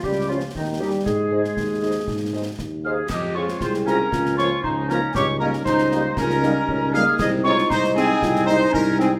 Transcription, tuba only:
\new Staff \with { instrumentName = "Tuba" } { \clef bass \time 2/4 \key aes \major \tempo 4 = 117 des,4 ees,4 | aes,4 ees,4 | aes,4 ees,4 | f,4 c,4 |
des,4 des,4 | des,4 des,4 | des,4 des,4 | c,4 c,4 |
c,4 c,4 | }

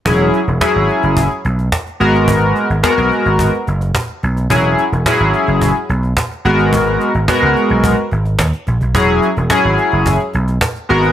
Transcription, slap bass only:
\new Staff \with { instrumentName = "Slap bass" } { \clef bass \time 4/4 \key e \lydian \tempo 4 = 108 e,,8 r16 e,,16 r16 gis,,16 r16 fis,,8 r16 b,,8 r8 gis,,8 | gis,,8 r16 gis,,16 r16 b,,16 r16 gis,,8 r16 fis,,8 r8 b,,8 | e,,8 r16 e,,16 r16 gis,,16 r16 fis,,8 r16 b,,8 r8 gis,,8 | gis,,8 r16 gis,,16 r16 cis,16 r16 b,,8 r16 gis,,8 dis,16 r16 ais,,16 b,,16 |
e,,8 r16 e,,16 r16 gis,,16 r16 fis,,8 r16 b,,8 r8 gis,,8 | }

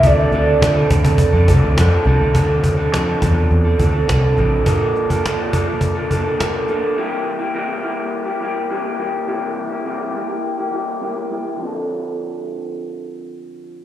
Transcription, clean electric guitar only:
\new Staff \with { instrumentName = "Clean electric guitar" } { \time 4/4 \key d \minor \tempo 4 = 104 <d f c' d' a'>8 <f c' d' a'>8 <d f c' d' a'>16 <c' d' a'>8 <c' d' a'>8 <c' d' a'>16 <f c' d' a'>8 <d f c' d' a'>8 <f c' d' a'>16 <c' d' a'>16 | <d f c' d' a'>8. <c' d' a'>16 <d f c' d' a'>8 <f c' d' a'>8. <c' d' a'>16 <f c' d' a'>16 <c' d' a'>16 <d f c' d' a'>16 <c' d' a'>16 <f c' d' a'>8 | <bes, d f bes d' a'>8. <f bes d' a'>16 <bes, d f bes d' a'>8 <f bes d' a'>16 <f bes d' a'>8 <f bes d' a'>16 <f bes d' a'>16 <f bes d' a'>16 <bes, d f bes d' a'>16 <f bes d' a'>16 <f bes d' a'>8 | <c g bes e' g'>8. <bes e' g'>16 <c g bes e' g'>8 <g bes e' g'>8. <bes e' g'>16 <g bes e' g'>8 <c g bes e' g'>16 <bes e' g'>16 <g bes e' g'>8 |
<c g bes e' g'>8. <bes e' g'>16 <c g bes e' g'>8 <g bes e' g'>16 <bes e' g'>8 <bes e' g'>16 <g bes e' g'>8 <c g bes e' g'>16 <bes e' g'>16 <g bes e' g'>8 | <d f c' d' a'>1 | }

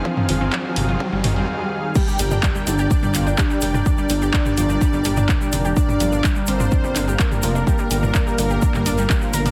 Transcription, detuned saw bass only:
\new Staff \with { instrumentName = "Detuned saw bass" } { \clef bass \time 4/4 \key g \phrygian \tempo 4 = 126 r8 g,,8 r8 g,,8 r16 g,,16 g,,8 r4 | r8 g,,8 r8 g,,8 r16 g,,16 g,,8 r8 f,,8 | r8 g,,8 r8 g,,8 r16 g,,16 g,,8 r8 f,,8 | r8 g,,8 r8 g,,8 r16 g,,16 g,,8 r8 f,,8 |
r8 g,,8 r8 g,,8 r16 g,,16 g,,8 r8 g,,8 | }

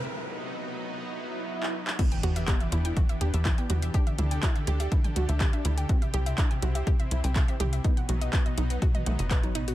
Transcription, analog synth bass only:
\new Staff \with { instrumentName = "Analog synth bass" } { \clef bass \time 4/4 \key e \minor \tempo 4 = 123 r1 | r8 e,8 r8 e,8 r8 e,16 e,8 r16 e,8 | r8 d,8 r8 d,8 r8 d,16 d,8 r16 d,8 | r8 c,8 r8 c,8 r8 c,16 c,8 r16 c,8 |
r8 b,,8 r8 b,,8 r8 b,,16 fis,,8. a,,8 | }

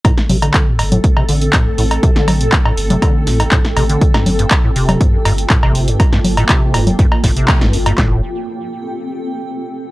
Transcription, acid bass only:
\new Staff \with { instrumentName = "Acid bass" } { \clef bass \time 4/4 \key a \minor \tempo 4 = 121 a,16 r16 c16 d8 a,16 g,16 a,16 r16 c16 d8 a,16 g,16 a,16 r16 | c16 d8 a,16 g,16 a,16 r16 c16 d8 a,16 g,16 a,16 r16 c16 d16~ | d16 g,16 f,16 g,16 r16 a,16 c8 g,16 f,16 g,16 r16 a,16 c8 g,16 | f,16 g,16 r16 a,16 c8 g,16 f,16 g,16 r16 a,16 c8 g,16 f,16 g,16 |
a,8 r2. r8 | }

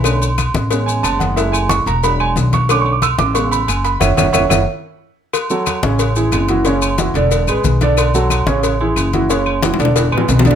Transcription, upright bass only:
\new Staff \with { instrumentName = "Upright bass" } { \clef bass \time 4/4 \key a \major \tempo 4 = 182 b,,4. a,,4. fis,,4~ | fis,,4. e,,4. b,,4~ | b,,4. a,,4. fis,,4 | fis,,8 fis,,8 fis,,8 fis,,8 r2 |
r4. a,,4. fis,,4~ | fis,,4. e,,4 a,,8 b,,4~ | b,,4. a,,4. fis,,4~ | fis,,4. e,,4 a,,8 b,,4 | }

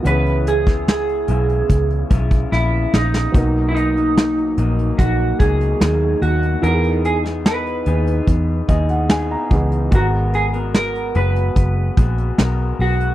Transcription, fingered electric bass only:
\new Staff \with { instrumentName = "Fingered electric bass" } { \clef bass \time 4/4 \key b \major \tempo 4 = 73 cis,4. b,,8 cis,8 b,,8 ais,,8 ais,,8 | b,,4. ais,,8 ais,,8 cis,8 dis,8 dis,8 | e,4. dis,8 e,8 dis,4 cis,8 | gis,,4. fis,,8 fis,,8 ais,,8 b,,8 b,,8 | }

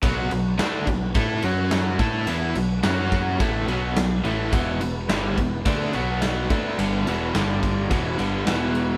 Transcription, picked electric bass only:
\new Staff \with { instrumentName = "Picked electric bass" } { \clef bass \time 4/4 \key b \minor \tempo 4 = 107 b,,8 b,,8 d,8 b,,8 a,8 fis,4 a,8 | e,8 b,,8 fis,4 a,,8 b,,8 b,,8 a,,8 | e,,8 e,,8 g,,8 e,,8 d,8 b,,4 d,8 | g,,8 e,,8 g,,4 e,,8 g,,8 e,,4 | }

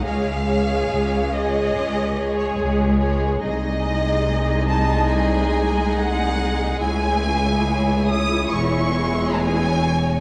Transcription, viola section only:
\new Staff \with { instrumentName = "Viola section" } { \time 4/4 \key des \major \tempo 4 = 70 << { aes'8 aes'4 aes'4 aes'4 aes'8 | \key cis \minor dis'1 | e'1 | } \\ { aes8 aes4 aes4 aes4 aes8 | gis1~ | gis2 gis2 | } >> }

